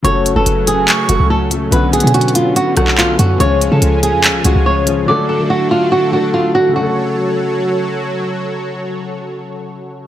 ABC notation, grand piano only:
X:1
M:4/4
L:1/16
Q:1/4=143
K:F#m
V:1 name="Grand piano"
[C,F,A,FA]2 z [C,F,A,FB]4- [C,F,A,FB] z2 [C,F,A,FA]3 z [C,F,A,FA] z | [D,F,B,CF]2 z [D,F,B,CF]4- [D,F,B,CF] z2 [D,F,B,CA]4 z2 | [C,^E,G,^EG]2 z [C,E,E]4- [C,E,E] z2 [C,E,G,EG]3 z [C,E,G,EG] z | [D,F,A,FA]2 z [D,F,A,FA]4- [D,F,A,FA] z2 [D,F,A,FA]4 z2 |
[C,A,FA]16- | [C,A,FA]16 |]